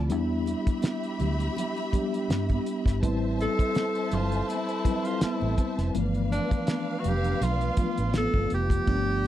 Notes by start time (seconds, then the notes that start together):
Already playing: D2 F3 A3 C4 F4
0.09 E2 G3 B3 D4 E4 G4 E5 B5, closed hi-hat, muted conga
0.46 closed hi-hat, muted conga
0.67 kick, closed hi-hat
0.82 snare, closed hi-hat, high conga
1.03 closed hi-hat
1.19 D2, closed hi-hat, low conga
1.40 closed hi-hat
1.57 closed hi-hat, muted conga, low conga
1.77 closed hi-hat
1.92 G3 B3 D4 G4, kick, closed hi-hat, muted conga, low conga
2.14 closed hi-hat
2.30 G2, snare, closed hi-hat, high conga
2.49 kick, closed hi-hat, high conga
2.66 closed hi-hat
2.86 G1, kick, snare, closed hi-hat
3.02 A1 G3 C4 E4 B4 C5 E5 A5, kick, closed hi-hat, muted conga
3.39 A4, closed hi-hat, muted conga
3.59 kick, closed hi-hat
3.75 A4, snare, closed hi-hat, high conga
3.95 closed hi-hat
4.12 G1 F4, closed hi-hat, low conga
4.32 closed hi-hat
4.49 E4, closed hi-hat, muted conga
4.69 closed hi-hat
4.84 G3 C4 E4 B4, kick, closed hi-hat, muted conga, low conga
5.05 F4, closed hi-hat
5.21 E4, muted fingered electric bass stroke, snare, closed hi-hat, high conga
5.41 A1, high conga
5.58 kick, closed hi-hat
5.78 F1, snare, closed hi-hat
5.94 G1 E3 F3 A3 B3 D4 B4 F5, closed hi-hat, muted conga
6.14 closed hi-hat
6.32 D4, closed hi-hat, muted conga
6.51 kick, closed hi-hat
6.67 snare, closed hi-hat, high conga
7.00 F#4
7.04 F1, closed hi-hat, low conga
7.08 G4
7.24 closed hi-hat
7.41 B1 F4, closed hi-hat, muted conga, low conga
7.61 closed hi-hat
7.77 F3 A3 B3 F4, muted fingered electric bass stroke, kick, closed hi-hat, muted conga, low conga
7.98 A1, closed hi-hat
8.14 A4, snare, closed hi-hat, high conga
8.34 G1, kick, high conga
8.50 F1, closed hi-hat
8.54 G4
8.70 kick, closed hi-hat
8.86 G1 F3 A3 B3 D4 D5, kick, crash, muted conga